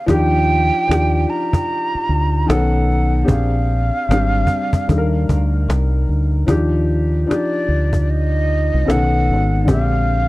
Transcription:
0.06 0.70 D#2 loud
0.06 0.62 F3 loud
0.06 0.63 D4 medium
0.06 0.63 D#4 medium
0.06 0.64 G4 loud
0.06 cajon bass loud
0.11 1.31 G5 loud
0.50 cajon slap soft
0.87 1.25 D#2 medium
0.87 1.96 F3 medium
0.87 1.97 D4 medium
0.87 1.97 D#4 medium
0.87 1.98 G4 medium
0.87 cajon slap loud
1.29 2.50 A#5 medium
1.29 cajon slap soft
1.53 cajon bass loud
1.70 cajon slap soft
1.95 muted fingered electric bass stroke soft
2.09 2.45 D2 medium
2.09 cajon slap soft
2.46 3.25 B1 loud
2.46 3.16 D#3 medium
2.46 3.16 B3 medium
2.46 3.17 C#4 medium
2.46 3.17 A4 medium
2.46 3.29 F#5 medium
2.46 cajon slap loud
2.92 cajon slap soft
3.25 3.90 A#1 loud
3.25 3.82 C4 medium
3.25 3.83 D4 medium
3.25 3.81 G4 medium
3.25 3.83 G#4 medium
3.25 cajon bass loud
3.30 5.65 F5 loud
3.70 cajon slap soft
3.96 cajon slap soft
4.09 4.45 G#1 medium
4.09 4.86 G3 medium
4.09 4.89 C4 medium
4.09 4.88 D4 medium
4.09 cajon slap medium
4.13 4.91 G4 medium
4.47 cajon bass medium
4.73 cajon bass loud
4.88 5.25 D#2 loud
4.88 6.18 G3 medium
4.88 6.19 D4 medium
4.88 6.19 D#4 medium
4.88 4.98 A4 medium
4.88 cajon bass loud
4.98 6.23 A#4 medium
5.29 5.65 D2 medium
5.29 cajon bass medium
5.68 6.04 C2 medium
5.68 cajon slap loud
6.09 6.45 D2 medium
6.09 cajon slap soft
6.47 7.24 D#2 loud
6.47 7.02 F3 medium
6.47 7.03 D4 medium
6.47 7.04 D#4 medium
6.47 7.04 G4 loud
6.47 cajon bass loud
6.90 cajon slap soft
7.26 8.35 F3 medium
7.26 8.36 D4 medium
7.26 8.37 D#4 medium
7.26 8.37 G4 medium
7.30 8.12 D5 medium
7.30 cajon slap medium
7.68 8.70 D2 medium
7.68 cajon slap soft
7.93 cajon bass medium
8.10 8.92 D#5 loud
8.10 cajon slap soft
8.49 cajon slap soft
8.74 8.87 C2 medium
8.84 9.31 B1 medium
8.84 8.95 C#3 medium
8.84 9.55 B3 medium
8.84 9.56 C#4 medium
8.84 9.57 A4 medium
8.90 9.58 D#3 medium
8.90 9.70 F#5 loud
8.90 cajon slap medium
9.29 9.68 G#1 medium
9.29 cajon slap soft
9.65 10.28 A#1 medium
9.65 10.21 D3 medium
9.65 10.22 G#3 medium
9.65 10.23 C4 medium
9.65 10.23 G4 medium
9.65 cajon bass loud
9.71 10.28 F5 loud
10.10 cajon slap soft

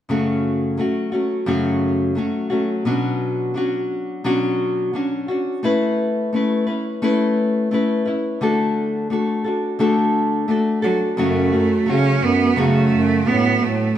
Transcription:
0.09 0.78 F#2 medium
0.09 0.78 C#3 medium
0.09 0.77 F#3 medium
0.09 0.77 A3 medium
0.09 0.79 C#4 medium
0.09 0.80 F#4 medium
0.77 1.12 F#3 medium
0.77 1.13 A3 soft
0.77 1.12 C#4 medium
0.77 1.11 F#4 medium
1.12 1.46 F#3 soft
1.12 1.47 A3 soft
1.12 1.47 C#4 soft
1.12 1.47 F#4 soft
1.46 2.16 F#2 medium
1.46 2.16 C#3 medium
1.46 2.15 F#3 medium
1.46 2.15 A3 medium
1.46 2.17 C#4 medium
1.46 2.18 F#4 medium
2.15 2.51 F#3 soft
2.15 2.51 A3 medium
2.15 2.50 C#4 medium
2.15 2.49 F#4 medium
2.50 2.85 F#3 soft
2.50 2.86 A3 soft
2.50 2.86 C#4 soft
2.50 2.85 F#4 soft
2.85 3.55 B2 medium
2.85 3.53 F#3 medium
2.85 3.56 C#4 medium
2.85 3.54 D4 medium
2.85 3.56 F#4 medium
3.54 4.23 F#3 soft
3.54 4.25 C#4 medium
3.54 4.24 D4 soft
3.54 4.25 F#4 medium
4.24 4.94 B2 medium
4.24 4.92 F#3 medium
4.24 4.95 C#4 medium
4.24 4.94 D4 medium
4.24 4.95 F#4 medium
4.93 5.28 F#3 soft
4.93 5.29 C#4 medium
4.93 5.29 D4 medium
4.93 5.27 F#4 medium
5.28 5.62 C#4 soft
5.28 5.63 D4 soft
5.28 5.63 F#4 soft
5.63 6.32 A3 medium
5.63 6.33 C#4 medium
5.63 6.33 E4 medium
5.63 6.34 B4 medium
6.33 6.67 A3 soft
6.33 6.68 C#4 medium
6.33 6.67 E4 medium
6.33 6.65 B4 medium
6.67 7.01 C#4 soft
6.67 7.02 E4 soft
6.67 7.02 B4 soft
7.02 7.71 A3 medium
7.02 7.71 C#4 medium
7.02 7.72 E4 medium
7.02 7.72 B4 medium
7.71 8.06 A3 medium
7.71 8.07 C#4 medium
7.71 8.06 E4 medium
7.71 8.04 B4 medium
8.05 8.42 C#4 soft
8.05 8.41 E4 soft
8.05 8.41 B4 soft
8.41 9.10 D3 medium
8.41 9.10 A3 medium
8.41 9.10 D4 medium
8.41 9.12 F#4 medium
8.41 9.13 A4 medium
9.10 9.45 A3 medium
9.10 9.45 D4 soft
9.10 9.45 F#4 medium
9.10 9.43 A4 medium
9.44 9.79 D4 soft
9.44 9.79 F#4 soft
9.44 9.79 A4 soft
9.79 10.49 D3 medium
9.79 10.47 A3 medium
9.79 10.48 D4 medium
9.79 10.50 F#4 medium
9.79 10.50 A4 medium
10.48 10.83 A3 medium
10.48 10.84 D4 medium
10.48 10.83 F#4 medium
10.48 10.81 A4 medium
10.82 11.00 F#3 medium
10.82 11.18 D4 soft
10.82 11.18 F#4 soft
10.82 11.18 A4 medium
11.17 11.52 F#2 medium
11.17 11.75 F#2 medium
11.17 11.53 C#3 medium
11.17 11.53 F#3 medium
11.17 11.53 A3 medium
11.17 11.91 A3 medium
11.17 11.52 C#4 medium
11.17 11.51 F#4 medium
11.52 11.85 F#3 soft
11.52 11.86 A3 soft
11.52 11.87 C#4 soft
11.52 11.87 F#4 soft
11.86 12.16 C#3 medium
11.86 12.57 F#3 soft
11.86 12.56 A3 soft
11.86 12.57 C#4 medium
11.86 12.25 C#4 medium
11.86 12.58 F#4 medium
12.22 12.51 F#2 medium
12.22 12.60 B3 medium
12.56 13.26 F#2 medium
12.56 13.26 C#3 medium
12.56 12.86 C#3 medium
12.56 13.25 F#3 medium
12.56 13.26 A3 medium
12.56 13.29 A3 medium
12.56 13.27 C#4 medium
12.56 13.28 F#4 medium
12.92 13.21 F#2 medium
13.25 13.55 A2 medium
13.25 13.96 F#3 soft
13.25 13.96 A3 medium
13.25 13.65 B3 medium
13.25 13.97 C#4 soft
13.25 13.97 F#4 medium
13.62 13.90 A2 medium
13.62 13.97 A3 medium

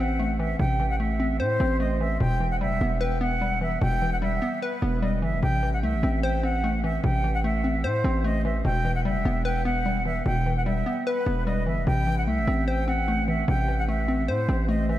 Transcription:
0.00 0.55 A1 loud
0.00 0.19 E3 medium
0.00 0.18 A3 medium
0.00 1.00 C4 medium
0.00 0.80 C5 loud
0.00 0.37 F#5 medium
0.20 0.99 A3 medium
0.39 0.78 E3 medium
0.39 0.57 E5 medium
0.59 1.41 A1 loud
0.59 1.60 C3 medium
0.59 0.88 G5 loud
0.80 1.80 E3 medium
0.90 0.98 F#5 loud
1.00 1.79 A3 medium
1.00 1.38 E5 medium
1.20 1.59 C4 medium
1.40 1.59 A2 loud
1.40 2.20 C5 loud
1.40 1.78 C5 medium
1.60 2.18 A1 loud
1.60 2.21 C4 medium
1.80 2.20 A3 medium
1.80 1.98 D#5 medium
2.00 2.21 E3 medium
2.00 2.18 E5 medium
2.20 2.62 E1 loud
2.20 3.21 B2 loud
2.20 2.49 G5 loud
2.40 3.41 E3 medium
2.51 2.60 F#5 medium
2.61 2.73 F#1 loud
2.61 3.40 G3 medium
2.61 2.99 E5 medium
2.71 2.80 E1 loud
2.81 3.78 E1 loud
2.81 3.20 B3 medium
3.01 4.02 B4 loud
3.01 3.19 G5 medium
3.21 4.22 B3 medium
3.21 3.59 F#5 medium
3.41 4.21 G3 medium
3.61 4.01 E3 medium
3.61 3.79 E5 medium
3.81 4.40 E1 loud
3.81 4.82 B2 medium
3.81 4.11 G5 loud
4.02 5.03 E3 medium
4.13 4.21 F#5 medium
4.22 5.01 G3 medium
4.22 4.60 E5 medium
4.42 4.81 B3 medium
4.62 5.00 B4 medium
4.62 5.43 B4 loud
4.82 5.24 E1 loud
4.82 5.43 B3 medium
5.02 5.43 G3 loud
5.02 5.20 D#5 medium
5.22 5.35 G1 loud
5.22 5.43 E3 medium
5.22 5.40 E5 medium
5.33 5.42 E1 loud
5.43 5.84 A1 loud
5.43 6.43 C3 loud
5.43 5.72 G5 loud
5.63 6.63 E3 medium
5.74 5.82 F#5 medium
5.83 5.95 C2 loud
5.83 6.63 A3 medium
5.83 6.21 E5 medium
5.94 6.03 A1 loud
6.03 7.00 A1 loud
6.03 6.42 C4 medium
6.23 7.24 C5 loud
6.23 6.41 G5 medium
6.43 7.44 C4 medium
6.43 6.81 F#5 medium
6.64 7.43 A3 medium
6.84 7.23 E3 medium
6.84 7.01 E5 medium
7.04 7.86 A1 loud
7.04 8.05 C3 medium
7.04 7.33 G5 loud
7.24 8.25 E3 medium
7.34 7.43 F#5 medium
7.44 8.23 A3 medium
7.44 7.82 E5 medium
7.64 8.04 C4 medium
7.84 8.03 A2 loud
7.84 8.65 C5 loud
7.84 8.22 C5 medium
8.04 8.62 A1 loud
8.04 8.65 C4 medium
8.24 8.65 A3 medium
8.24 8.42 D#5 medium
8.45 8.65 E3 medium
8.45 8.62 E5 medium
8.65 9.07 E1 loud
8.65 9.66 B2 loud
8.65 8.94 G5 loud
8.85 9.86 E3 medium
8.95 9.04 F#5 medium
9.05 9.17 F#1 loud
9.05 9.85 G3 medium
9.05 9.43 E5 medium
9.16 9.25 E1 loud
9.25 10.22 E1 loud
9.25 9.64 B3 medium
9.45 10.46 B4 loud
9.45 9.63 G5 medium
9.65 10.66 B3 medium
9.65 10.03 F#5 medium
9.86 10.65 G3 medium
10.06 10.45 E3 medium
10.06 10.23 E5 medium
10.26 10.84 E1 loud
10.26 11.27 B2 medium
10.26 10.55 G5 loud
10.46 11.47 E3 medium
10.57 10.65 F#5 medium
10.66 11.46 G3 medium
10.66 11.04 E5 medium
10.86 11.25 B3 medium
11.06 11.44 B4 loud
11.06 11.87 B4 loud
11.26 11.68 E1 loud
11.26 11.87 B3 medium
11.47 11.87 G3 loud
11.47 11.64 D#5 medium
11.66 11.79 G1 loud
11.66 11.87 E3 medium
11.66 11.84 E5 medium
11.77 11.86 E1 loud
11.87 12.29 A1 loud
11.87 12.88 C3 medium
11.87 12.16 G5 loud
12.07 13.08 E3 medium
12.18 12.26 F#5 medium
12.27 12.39 C2 loud
12.27 13.07 A3 medium
12.27 12.65 E5 medium
12.38 12.47 A1 loud
12.47 13.44 A1 loud
12.47 12.87 C4 medium
12.67 13.68 C5 loud
12.67 12.85 G5 medium
12.88 13.88 C4 medium
12.88 13.26 F#5 medium
13.08 13.87 A3 medium
13.28 13.67 E3 medium
13.28 13.45 E5 medium
13.48 14.30 A1 loud
13.48 14.49 C3 medium
13.48 13.77 G5 loud
13.68 14.69 E3 medium
13.79 13.87 F#5 medium
13.88 14.67 A3 medium
13.88 14.26 E5 medium
14.08 14.48 C4 medium
14.28 14.48 A2 loud
14.28 14.99 C5 loud
14.28 14.66 C5 medium
14.49 14.99 A1 loud
14.49 14.99 C4 medium
14.69 14.99 A3 medium
14.69 14.86 D#5 medium
14.89 14.99 E3 medium
14.89 14.99 E5 medium

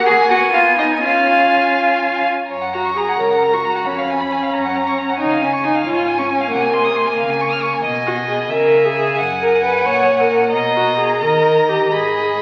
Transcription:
0.00 0.31 A#3 medium
0.00 0.32 F#5 medium
0.06 0.14 G#4 medium
0.06 0.30 G#5 medium
0.29 1.02 B3 medium
0.29 0.52 F#4 medium
0.29 0.39 F#5 medium
0.29 1.02 G#5 medium
0.53 0.77 F4 medium
0.53 0.62 F5 medium
0.78 1.02 D#4 medium
0.78 0.87 D#5 medium
1.03 2.27 C#4 medium
1.03 2.24 F4 medium
1.03 2.25 F5 medium
1.03 2.27 G#5 medium
2.51 3.08 F#2 soft
2.51 2.64 C#5 soft
2.51 3.88 A#5 soft
2.62 2.75 F#5 soft
2.73 2.95 F#4 soft
2.73 2.87 A#5 soft
2.85 2.99 C#6 soft
2.97 3.18 G#4 soft
2.97 3.10 A#5 soft
3.09 3.22 F#5 soft
3.19 3.76 C#2 soft
3.19 3.55 A#4 medium
3.19 3.33 C#5 soft
3.31 3.45 F#5 soft
3.43 3.55 A#5 soft
3.53 3.64 F#4 soft
3.53 3.66 C#6 soft
3.64 3.88 F#4 soft
3.64 3.78 A#5 soft
3.76 3.87 F#5 soft
3.86 4.43 F2 soft
3.86 5.19 C#4 medium
3.86 4.00 C#5 soft
3.86 4.55 B5 soft
3.99 4.11 F5 soft
4.10 4.22 G#5 soft
4.21 4.33 B5 soft
4.32 4.44 G#5 soft
4.43 4.54 F5 soft
4.54 5.09 F#2 soft
4.54 4.67 C#5 soft
4.54 5.19 A#5 soft
4.65 4.77 F#5 soft
4.76 4.89 A#5 soft
4.87 5.00 C#6 soft
4.98 5.11 A#5 soft
5.10 5.19 F#5 soft
5.19 5.75 C#3 soft
5.19 5.41 D#4 medium
5.19 5.32 C#5 soft
5.19 7.80 G#5 soft
5.31 5.43 F5 soft
5.42 5.50 C#4 medium
5.42 5.54 G#5 soft
5.53 5.66 C#6 soft
5.64 5.86 D#4 medium
5.64 5.77 G#5 soft
5.75 5.88 F5 soft
5.86 6.41 G#2 soft
5.86 6.18 F4 medium
5.86 5.99 C#5 soft
5.97 6.09 F5 soft
6.08 6.20 G#5 soft
6.18 6.23 C#4 soft
6.18 6.31 C#6 soft
6.29 6.51 C#4 medium
6.29 6.42 G#5 soft
6.40 6.51 F5 soft
6.51 7.06 C3 soft
6.51 7.82 A#3 medium
6.51 6.64 F#5 soft
6.62 6.75 G#5 soft
6.73 6.86 C6 soft
6.84 6.97 D#6 soft
6.96 7.09 C6 soft
7.07 7.18 G#5 soft
7.17 7.73 C#3 medium
7.17 7.32 F5 soft
7.30 7.43 G#5 soft
7.41 7.53 C#6 soft
7.52 7.64 F6 soft
7.63 7.75 C#6 soft
7.73 7.84 G#5 soft
7.84 8.47 B2 soft
7.84 8.52 D#5 soft
7.84 8.47 G#5 soft
8.07 8.15 F#4 medium
8.29 8.50 G#4 medium
8.51 9.19 C#3 medium
8.51 8.87 A#4 medium
8.51 9.20 E5 soft
8.51 10.49 G#5 soft
8.85 8.95 G#4 medium
8.96 9.18 G#4 medium
9.18 9.85 F#2 medium
9.18 10.53 F#5 medium
9.41 9.62 A#4 medium
9.64 9.87 B4 medium
9.86 10.54 A#2 medium
9.86 10.22 C#5 medium
10.20 10.30 A#4 medium
10.31 10.53 A#4 medium
10.53 11.23 B2 medium
10.53 11.20 D#5 soft
10.53 11.93 A#5 medium
10.76 10.97 F#4 medium
10.99 11.23 G#4 medium
11.22 11.92 D#3 soft
11.22 11.70 A#4 medium
11.22 11.91 D#5 soft
11.69 11.92 G4 medium
11.92 12.42 G#2 soft
11.92 12.42 G#4 medium
11.92 12.42 D#5 soft
11.92 12.42 B5 soft

